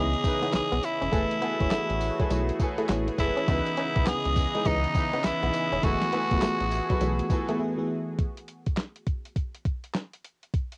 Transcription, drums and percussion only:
0.14 closed hi-hat
0.24 kick, closed hi-hat, tambourine
0.43 closed hi-hat
0.53 snare, clap, closed hi-hat, tambourine
0.72 closed hi-hat
0.83 closed hi-hat, tambourine
1.02 closed hi-hat
1.13 kick, closed hi-hat, tambourine
1.31 closed hi-hat
1.42 closed hi-hat
1.60 kick, closed hi-hat
1.71 snare, clap, closed hi-hat, tambourine
1.90 closed hi-hat
2.01 open hi-hat, tambourine
2.19 kick, closed hi-hat
2.30 closed hi-hat, tambourine
2.49 closed hi-hat
2.59 kick, closed hi-hat, tambourine
2.78 closed hi-hat
2.89 snare, clap, closed hi-hat, tambourine
3.08 closed hi-hat
3.18 kick, closed hi-hat, tambourine
3.37 closed hi-hat
3.48 kick, closed hi-hat, tambourine
3.66 closed hi-hat
3.77 closed hi-hat
3.96 kick, closed hi-hat
4.06 snare, clap, closed hi-hat, tambourine
4.25 closed hi-hat
4.36 kick, open hi-hat, tambourine
4.55 closed hi-hat
4.65 kick, closed hi-hat, tambourine
4.84 closed hi-hat
4.95 kick, closed hi-hat, tambourine
5.13 closed hi-hat
5.24 snare, clap, closed hi-hat, tambourine
5.43 closed hi-hat
5.53 closed hi-hat, tambourine
5.72 closed hi-hat
5.83 kick, closed hi-hat, tambourine
6.01 snare, closed hi-hat
6.12 closed hi-hat
6.31 kick, closed hi-hat
6.42 snare, clap, closed hi-hat, tambourine
6.60 closed hi-hat
6.71 open hi-hat, tambourine
6.90 kick, closed hi-hat
7.01 closed hi-hat, tambourine
7.19 closed hi-hat
7.30 kick, closed hi-hat, tambourine
7.49 closed hi-hat
8.19 kick, closed hi-hat
8.37 closed hi-hat
8.48 closed hi-hat
8.66 kick, closed hi-hat
8.77 snare, clap, closed hi-hat
8.96 closed hi-hat
9.07 kick, closed hi-hat
9.25 closed hi-hat
9.36 kick, closed hi-hat
9.55 closed hi-hat
9.65 kick, closed hi-hat
9.84 closed hi-hat
9.94 snare, clap, closed hi-hat
10.13 closed hi-hat
10.25 closed hi-hat
10.43 closed hi-hat
10.54 kick, closed hi-hat
10.72 closed hi-hat

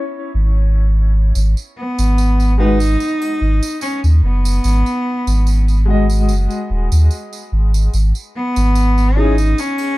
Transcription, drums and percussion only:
1.35 tambourine
1.57 tambourine
1.99 tambourine
2.18 tambourine
2.40 tambourine
2.80 tambourine
3.00 tambourine
3.22 tambourine, triangle
3.63 tambourine
3.81 tambourine
4.04 tambourine
4.45 tambourine
4.64 tambourine
4.86 tambourine
5.27 tambourine
5.47 tambourine
5.68 tambourine
6.10 tambourine
6.29 tambourine
6.50 tambourine
6.92 tambourine
7.11 tambourine
7.33 tambourine
7.74 tambourine
7.94 tambourine
8.15 tambourine
8.56 tambourine
8.75 tambourine
8.98 tambourine
9.38 tambourine
9.58 tambourine
9.78 tambourine, triangle

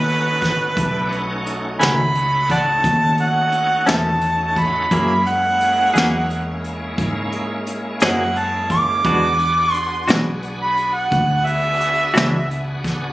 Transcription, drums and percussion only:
0.08 closed hi-hat
0.42 kick, snare, closed hi-hat
0.77 kick, closed hi-hat
1.12 closed hi-hat
1.46 closed hi-hat
1.81 snare, closed hi-hat
2.15 closed hi-hat
2.49 kick, closed hi-hat
2.84 kick, closed hi-hat
3.18 closed hi-hat
3.52 closed hi-hat
3.86 snare, closed hi-hat
4.21 closed hi-hat
4.56 kick, closed hi-hat
4.91 kick, closed hi-hat
5.26 closed hi-hat
5.61 closed hi-hat
5.96 snare, closed hi-hat
6.30 closed hi-hat
6.64 closed hi-hat
6.98 kick, closed hi-hat
7.32 closed hi-hat
7.67 closed hi-hat
8.00 snare, closed hi-hat
8.35 closed hi-hat
8.70 kick, closed hi-hat
9.04 kick, closed hi-hat
9.39 closed hi-hat
9.74 closed hi-hat
10.08 snare, closed hi-hat
10.42 closed hi-hat
10.77 closed hi-hat
11.12 kick, closed hi-hat
11.46 closed hi-hat
11.81 closed hi-hat
12.15 snare, closed hi-hat
12.51 closed hi-hat
12.84 kick, snare, closed hi-hat

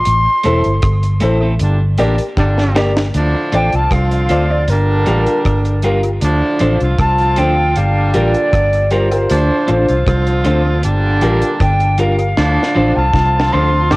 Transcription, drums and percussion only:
0.05 closed hi-hat
0.43 closed hi-hat
0.64 closed hi-hat
0.82 kick, cross-stick, closed hi-hat
1.03 closed hi-hat
1.20 closed hi-hat
1.60 closed hi-hat
1.98 closed hi-hat
2.18 closed hi-hat
2.37 kick, snare
2.58 snare
2.76 snare
2.97 snare
3.14 closed hi-hat
3.52 closed hi-hat
3.72 closed hi-hat
3.91 kick, cross-stick, closed hi-hat
4.11 closed hi-hat
4.29 closed hi-hat
4.68 closed hi-hat
5.06 closed hi-hat
5.27 closed hi-hat
5.45 kick, cross-stick, closed hi-hat
5.65 closed hi-hat
5.82 closed hi-hat
6.03 closed hi-hat
6.21 closed hi-hat
6.59 closed hi-hat
6.80 closed hi-hat
6.99 kick, cross-stick, closed hi-hat
7.18 closed hi-hat
7.36 closed hi-hat
7.76 closed hi-hat
8.14 closed hi-hat
8.34 closed hi-hat
8.53 kick, cross-stick, closed hi-hat
8.73 closed hi-hat
8.90 closed hi-hat
9.12 closed hi-hat
9.30 closed hi-hat
9.68 closed hi-hat
9.88 closed hi-hat
10.06 kick, cross-stick, closed hi-hat
10.27 closed hi-hat
10.45 closed hi-hat
10.83 closed hi-hat
11.21 closed hi-hat
11.42 closed hi-hat
11.60 kick, cross-stick, closed hi-hat
11.80 closed hi-hat
11.98 closed hi-hat
12.19 closed hi-hat
12.37 snare
12.63 snare
13.13 kick, snare
13.40 snare
13.91 snare

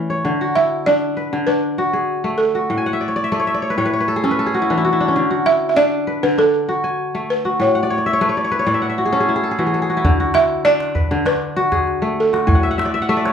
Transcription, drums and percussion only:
10.05 calabash thump
10.34 calabash click
10.80 calabash click
10.96 calabash thump
11.26 calabash click
11.56 calabash click
11.72 calabash thump, calabash click
11.87 calabash click
12.34 calabash click
12.48 calabash thump
12.79 calabash click
13.26 calabash click

